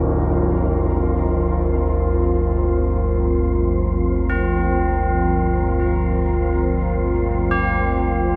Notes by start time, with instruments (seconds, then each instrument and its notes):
Already playing: synth drone G1 D2, analog synth pad F3 C4 F4 A#4 C5, synth texture C4 C5
4.30 tubular bells C4
4.62 analog synth pad D5
7.51 tubular bells G4